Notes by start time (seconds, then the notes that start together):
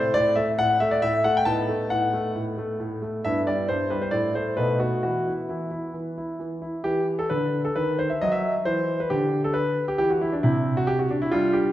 Already playing: A3 C4 E4 C5
0.14 A2 D5
0.36 A3 E5
0.59 A2 F#5
0.80 A3 E5
0.91 D5
1.02 A2 E5
1.24 A3 F#5
1.37 G5
1.45 A2 B3 D#4 A5
1.69 A3
1.90 A2 F#5
2.13 A3
2.36 A2
2.58 A3
2.80 A2
3.02 A3
3.25 G2 B3 E4 E5
3.47 G3 D5
3.69 G2 C5
3.90 G3 B4
4.02 C5
4.11 A2 A3 E4 D5
4.35 A3 C5
4.57 B2 A3 D#4 B4
4.80 B3 F#4
5.03 E3 B3 E4 F#4
5.28 E4
5.49 E3 E4
5.71 E4
5.94 E3
6.18 E4
6.39 E3
6.62 E4
6.84 E3 G4
7.19 A4
7.30 D3 B4
7.65 A4
7.76 D#3 B4
7.99 C5
8.10 E5
8.21 F#3 D#5
8.32 E5
8.65 E3 C5
9.00 B4
9.10 D3 G4
9.44 A4
9.54 B4
9.88 G4
9.98 E3 G4
10.10 F#4
10.21 E4
10.32 D4
10.43 C3 C4 E4
10.77 F#4
10.87 G4
10.99 F#4
11.11 D4
11.22 E4
11.31 G3 D4 F4
11.53 G4